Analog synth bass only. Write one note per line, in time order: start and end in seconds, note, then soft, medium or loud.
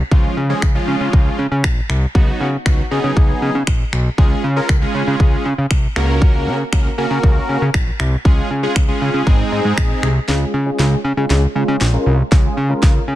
0.11 0.28 C#2 loud
0.37 0.53 C#3 loud
0.62 0.79 C#2 loud
0.88 0.96 C#3 loud
1.01 1.09 C#3 medium
1.13 1.30 C#2 loud
1.39 1.47 C#3 loud
1.51 1.66 C#3 loud
1.64 1.81 A#1 medium
1.89 2.06 C2 loud
2.15 2.31 C#2 loud
2.40 2.57 C#3 loud
2.66 2.82 C#2 loud
2.91 3.00 C#3 loud
3.04 3.12 C#3 medium
3.17 3.33 C#2 loud
3.42 3.50 C#3 loud
3.55 3.63 C#3 medium
3.67 3.84 A#1 medium
3.93 4.09 B1 loud
4.18 4.35 C#2 loud
4.44 4.60 C#3 loud
4.69 4.86 C#2 loud
4.95 5.03 C#3 loud
5.07 5.16 C#3 loud
5.20 5.37 C#2 loud
5.45 5.54 C#3 medium
5.58 5.66 C#3 medium
5.71 5.87 C2 medium
5.96 6.49 C#2 loud
6.47 6.64 C#3 loud
6.73 6.89 C#2 loud
6.98 7.06 C#3 loud
7.11 7.19 C#3 loud
7.23 7.40 C#2 loud
7.49 7.57 C#3 loud
7.62 7.70 C#3 medium
7.74 7.91 A#1 medium
8.00 8.16 C2 medium
8.25 8.42 C#2 medium
8.51 8.67 C#3 loud
8.76 8.93 C#2 loud
9.01 9.10 C#3 loud
9.14 9.22 C#3 loud
9.27 9.43 G#1 loud
9.52 9.60 G#2 loud
9.65 9.73 G#2 medium
9.78 9.94 A#1 medium
10.03 10.19 C2 loud
10.28 10.45 C#2 loud
10.54 10.70 C#3 medium
10.79 10.96 C#2 loud
11.04 11.13 C#3 loud
11.17 11.26 C#3 loud
11.30 11.47 C#2 loud
11.55 11.64 C#3 medium
11.68 11.76 C#3 medium
11.81 11.97 A#1 medium
12.06 12.23 C2 loud
12.32 12.48 C#2 loud
12.57 12.74 C#3 loud
12.83 12.99 C#2 loud
13.08 13.15 C#3 loud